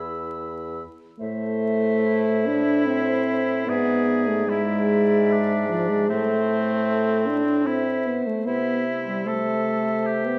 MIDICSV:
0, 0, Header, 1, 6, 480
1, 0, Start_track
1, 0, Key_signature, 0, "minor"
1, 0, Tempo, 913242
1, 632, Time_signature, 3, 2, 24, 8
1, 632, Tempo, 836820
1, 1592, Tempo, 808625
1, 3032, Tempo, 791557
1, 6116, End_track
2, 0, Start_track
2, 0, Title_t, "Flute"
2, 0, Program_c, 0, 73
2, 0, Note_on_c, 0, 88, 45
2, 432, Note_off_c, 0, 88, 0
2, 630, Note_on_c, 0, 76, 78
2, 1568, Note_off_c, 0, 76, 0
2, 1591, Note_on_c, 0, 76, 77
2, 2059, Note_off_c, 0, 76, 0
2, 2071, Note_on_c, 0, 76, 71
2, 2539, Note_off_c, 0, 76, 0
2, 2550, Note_on_c, 0, 76, 78
2, 3492, Note_off_c, 0, 76, 0
2, 3507, Note_on_c, 0, 76, 72
2, 4286, Note_off_c, 0, 76, 0
2, 4460, Note_on_c, 0, 76, 63
2, 4920, Note_off_c, 0, 76, 0
2, 4939, Note_on_c, 0, 76, 62
2, 5418, Note_off_c, 0, 76, 0
2, 5428, Note_on_c, 0, 76, 74
2, 6116, Note_off_c, 0, 76, 0
2, 6116, End_track
3, 0, Start_track
3, 0, Title_t, "Clarinet"
3, 0, Program_c, 1, 71
3, 0, Note_on_c, 1, 68, 59
3, 151, Note_off_c, 1, 68, 0
3, 631, Note_on_c, 1, 72, 91
3, 1569, Note_off_c, 1, 72, 0
3, 1596, Note_on_c, 1, 72, 84
3, 2065, Note_on_c, 1, 74, 86
3, 2074, Note_off_c, 1, 72, 0
3, 2546, Note_off_c, 1, 74, 0
3, 2552, Note_on_c, 1, 74, 83
3, 3493, Note_off_c, 1, 74, 0
3, 3508, Note_on_c, 1, 72, 86
3, 4286, Note_off_c, 1, 72, 0
3, 4467, Note_on_c, 1, 72, 70
3, 4923, Note_off_c, 1, 72, 0
3, 4947, Note_on_c, 1, 72, 78
3, 5422, Note_off_c, 1, 72, 0
3, 5431, Note_on_c, 1, 72, 82
3, 6116, Note_off_c, 1, 72, 0
3, 6116, End_track
4, 0, Start_track
4, 0, Title_t, "Oboe"
4, 0, Program_c, 2, 68
4, 0, Note_on_c, 2, 83, 50
4, 431, Note_off_c, 2, 83, 0
4, 1119, Note_on_c, 2, 64, 81
4, 2074, Note_on_c, 2, 68, 93
4, 2083, Note_off_c, 2, 64, 0
4, 2550, Note_on_c, 2, 64, 71
4, 2559, Note_off_c, 2, 68, 0
4, 3040, Note_on_c, 2, 62, 75
4, 3049, Note_off_c, 2, 64, 0
4, 3510, Note_off_c, 2, 62, 0
4, 3514, Note_on_c, 2, 60, 86
4, 4463, Note_on_c, 2, 64, 75
4, 4472, Note_off_c, 2, 60, 0
4, 4782, Note_off_c, 2, 64, 0
4, 4951, Note_on_c, 2, 64, 80
4, 5442, Note_on_c, 2, 69, 74
4, 5451, Note_off_c, 2, 64, 0
4, 5920, Note_on_c, 2, 67, 71
4, 5929, Note_off_c, 2, 69, 0
4, 6116, Note_off_c, 2, 67, 0
4, 6116, End_track
5, 0, Start_track
5, 0, Title_t, "French horn"
5, 0, Program_c, 3, 60
5, 0, Note_on_c, 3, 64, 49
5, 451, Note_off_c, 3, 64, 0
5, 629, Note_on_c, 3, 57, 108
5, 1358, Note_on_c, 3, 62, 103
5, 1367, Note_off_c, 3, 57, 0
5, 1584, Note_on_c, 3, 60, 87
5, 1592, Note_off_c, 3, 62, 0
5, 2061, Note_off_c, 3, 60, 0
5, 2065, Note_on_c, 3, 59, 103
5, 2423, Note_on_c, 3, 57, 86
5, 2431, Note_off_c, 3, 59, 0
5, 2538, Note_off_c, 3, 57, 0
5, 2541, Note_on_c, 3, 56, 93
5, 3255, Note_off_c, 3, 56, 0
5, 3266, Note_on_c, 3, 53, 88
5, 3387, Note_on_c, 3, 56, 83
5, 3396, Note_off_c, 3, 53, 0
5, 3508, Note_on_c, 3, 57, 101
5, 3517, Note_off_c, 3, 56, 0
5, 4227, Note_on_c, 3, 62, 102
5, 4236, Note_off_c, 3, 57, 0
5, 4467, Note_on_c, 3, 60, 83
5, 4477, Note_off_c, 3, 62, 0
5, 4705, Note_on_c, 3, 59, 92
5, 4714, Note_off_c, 3, 60, 0
5, 4831, Note_on_c, 3, 57, 85
5, 4841, Note_off_c, 3, 59, 0
5, 4946, Note_on_c, 3, 59, 97
5, 4955, Note_off_c, 3, 57, 0
5, 5212, Note_off_c, 3, 59, 0
5, 5315, Note_on_c, 3, 55, 80
5, 5433, Note_on_c, 3, 57, 94
5, 5442, Note_off_c, 3, 55, 0
5, 6036, Note_on_c, 3, 59, 85
5, 6045, Note_off_c, 3, 57, 0
5, 6116, Note_off_c, 3, 59, 0
5, 6116, End_track
6, 0, Start_track
6, 0, Title_t, "Bassoon"
6, 0, Program_c, 4, 70
6, 0, Note_on_c, 4, 40, 50
6, 431, Note_off_c, 4, 40, 0
6, 638, Note_on_c, 4, 45, 76
6, 2049, Note_off_c, 4, 45, 0
6, 2073, Note_on_c, 4, 44, 77
6, 3513, Note_on_c, 4, 45, 67
6, 3522, Note_off_c, 4, 44, 0
6, 4784, Note_off_c, 4, 45, 0
6, 4953, Note_on_c, 4, 48, 69
6, 6116, Note_off_c, 4, 48, 0
6, 6116, End_track
0, 0, End_of_file